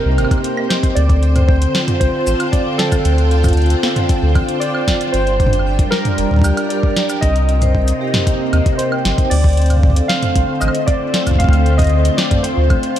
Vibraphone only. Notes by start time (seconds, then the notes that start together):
Already playing: C4 G4 A#4 C5
0.31 G4
0.44 C4
0.70 D#5
0.83 C5
0.97 C4
1.10 A4
1.23 C4
1.36 C5
1.49 C4
1.75 F4
1.88 C4
2.27 C4
2.40 F5
2.53 C4
2.66 A4
2.79 C4
2.92 C5
3.05 C4
3.31 F4
3.44 C4
3.83 C4
3.97 F5
4.10 C4
4.23 A4
4.36 C4
4.49 C5
4.62 C4
4.88 F4
5.01 C4
5.40 D4
5.53 G5
5.66 D4
5.79 A#4
5.92 D4
6.05 D5
6.18 D4
6.44 G4
6.57 D4
6.96 D4
7.09 G5
7.36 A#4
7.49 C4
7.62 C5
7.75 C4
8.01 G4
8.14 C4
8.53 D#5
8.66 D#5
8.79 A#4
8.92 G5
9.05 C5
9.18 D#4
9.57 C4
9.70 F5
9.83 C4
9.96 A4
10.10 C4
10.23 C5
10.36 C4
10.62 C5
10.75 C4
11.14 C4
11.27 F5
11.40 C4
11.53 A4
11.66 C4
11.79 C5
11.92 C4
12.18 C5
12.31 C4
12.71 C4
12.83 F5